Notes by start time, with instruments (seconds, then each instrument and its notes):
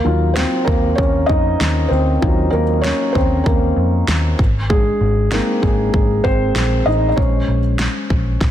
Already playing: felt piano A#3 A#4
0.05 picked electric bass D#2, felt piano F#3 D#4 F4
0.34 felt piano C4 C5, snare
0.65 picked electric bass D#2, felt piano A#3 A#4, kick
0.95 picked electric bass D#2, felt piano C#4 C#5, kick
1.26 picked electric bass F2, felt piano D#4 D#5, kick
1.60 picked electric bass D#2, snare
1.88 picked electric bass D2, felt piano C4 C5
2.22 picked electric bass D#2, felt piano F#3 D#4 F4, kick
2.50 picked electric bass D#2, felt piano A#3 A#4
2.81 felt piano C#4 C#5, snare
3.13 picked electric bass D#2, felt piano C4 C5, kick
3.44 picked electric bass D#2, felt piano A#3 A#4, kick
3.77 picked electric bass F2
4.08 picked electric bass D#2, snare
4.39 picked electric bass G#1, kick
4.70 felt piano G#3 G#4, kick
5.01 picked electric bass G#1
5.32 felt piano G#3 A#3 C4 D#4 A#4, snare
5.62 picked electric bass G#1, felt piano G#3 G#4, kick
5.94 picked electric bass G#1, kick
6.24 picked electric bass G#1, felt piano C4 C5, kick
6.55 picked electric bass A#1, snare
6.86 picked electric bass A1, felt piano D#4 D#5
7.09 felt piano D#5
7.16 picked electric bass A#1, felt piano G#3 C#4 C5 C#5, kick
7.48 picked electric bass A#1
7.79 snare
8.10 picked electric bass A#1, kick
8.41 picked electric bass A#1, kick, snare